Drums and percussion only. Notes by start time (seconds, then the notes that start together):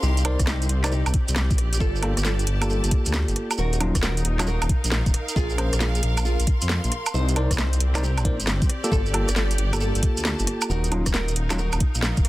0.03 maracas
0.17 closed hi-hat, maracas
0.25 closed hi-hat, high woodblock
0.39 kick, cross-stick, closed hi-hat, maracas
0.47 snare, maracas
0.62 closed hi-hat, maracas
0.69 closed hi-hat
0.84 snare, closed hi-hat, high woodblock, maracas
0.92 maracas
1.06 closed hi-hat, high woodblock, maracas
1.14 kick, closed hi-hat
1.28 closed hi-hat, maracas
1.36 snare, maracas
1.51 kick, closed hi-hat, maracas
1.58 cross-stick, closed hi-hat
1.73 closed hi-hat, maracas
1.80 kick, maracas
1.96 maracas
2.03 closed hi-hat, high woodblock
2.17 cross-stick, closed hi-hat, maracas
2.25 snare, maracas
2.39 closed hi-hat, maracas
2.47 closed hi-hat
2.62 closed hi-hat, high woodblock, maracas
2.70 maracas
2.84 closed hi-hat, maracas
2.91 kick, closed hi-hat
3.06 closed hi-hat, maracas
3.13 snare, maracas
3.28 closed hi-hat, maracas
3.36 cross-stick, closed hi-hat
3.51 closed hi-hat, high woodblock, maracas
3.58 maracas
3.73 closed hi-hat, maracas
3.81 closed hi-hat, high woodblock
3.95 kick, cross-stick, closed hi-hat, maracas
4.03 snare, maracas
4.17 closed hi-hat, maracas
4.25 closed hi-hat
4.39 snare, closed hi-hat, high woodblock, maracas
4.47 maracas
4.62 closed hi-hat, high woodblock, maracas
4.69 kick, closed hi-hat
4.84 closed hi-hat, maracas
4.92 snare
5.06 kick, closed hi-hat, maracas
5.14 cross-stick, closed hi-hat
5.28 closed hi-hat, maracas
5.36 kick, maracas
5.50 maracas
5.58 closed hi-hat, high woodblock
5.73 cross-stick, closed hi-hat, maracas
5.81 snare, maracas
5.95 closed hi-hat, maracas
6.03 closed hi-hat
6.17 closed hi-hat, high woodblock, maracas
6.25 maracas
6.40 closed hi-hat, maracas
6.47 kick, closed hi-hat
6.61 closed hi-hat, maracas
6.69 snare, maracas
6.84 closed hi-hat, maracas
6.92 cross-stick, closed hi-hat
7.06 closed hi-hat, high woodblock, maracas
7.14 maracas
7.28 closed hi-hat, maracas
7.36 closed hi-hat, high woodblock
7.51 kick, cross-stick, closed hi-hat, maracas
7.58 snare, maracas
7.73 closed hi-hat, maracas
7.80 closed hi-hat
7.95 snare, closed hi-hat, high woodblock, maracas
8.04 maracas
8.18 closed hi-hat, high woodblock, maracas
8.25 kick, closed hi-hat
8.40 closed hi-hat, maracas
8.47 snare, maracas
8.62 kick, closed hi-hat, maracas
8.69 cross-stick, closed hi-hat
8.84 closed hi-hat, maracas
8.92 kick, maracas
9.06 maracas
9.14 closed hi-hat, high woodblock
9.28 cross-stick, closed hi-hat, maracas
9.36 snare, maracas
9.51 closed hi-hat, maracas
9.58 closed hi-hat
9.73 closed hi-hat, high woodblock, maracas
9.80 maracas
9.95 closed hi-hat, maracas
10.03 kick, closed hi-hat
10.17 closed hi-hat, maracas
10.25 snare, maracas
10.39 closed hi-hat, maracas
10.47 cross-stick, closed hi-hat
10.61 closed hi-hat, high woodblock, maracas
10.70 maracas
10.84 closed hi-hat, maracas
10.92 closed hi-hat, high woodblock
11.06 kick, cross-stick, closed hi-hat, maracas
11.14 snare, maracas
11.28 closed hi-hat, maracas
11.36 closed hi-hat
11.50 snare, closed hi-hat, high woodblock, maracas
11.58 maracas
11.72 closed hi-hat, high woodblock, maracas
11.80 kick, closed hi-hat
11.95 closed hi-hat, maracas
12.03 snare, maracas
12.17 kick, closed hi-hat, maracas
12.25 cross-stick, closed hi-hat